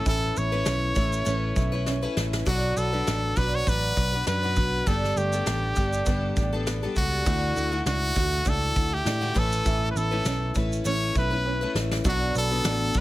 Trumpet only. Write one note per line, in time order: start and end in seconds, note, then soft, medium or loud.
0.09 0.39 A4 medium
0.38 2.17 C#5 medium
2.48 2.79 F#4 medium
2.78 3.39 A4 medium
3.37 3.57 B4 loud
3.55 3.70 C#5 medium
3.69 4.28 B4 loud
4.28 4.89 B4 loud
4.87 5.19 A4 loud
5.17 6.70 G4 medium
6.97 7.83 F#4 loud
7.88 8.50 F#4 loud
8.49 8.95 A4 loud
8.94 9.40 G4 loud
9.39 9.91 A4 loud
9.91 9.98 B4 medium
9.97 10.56 A4 medium
10.86 11.14 C#5 loud
11.18 11.73 B4 medium
12.09 12.35 F#4 loud
12.38 12.99 A4 loud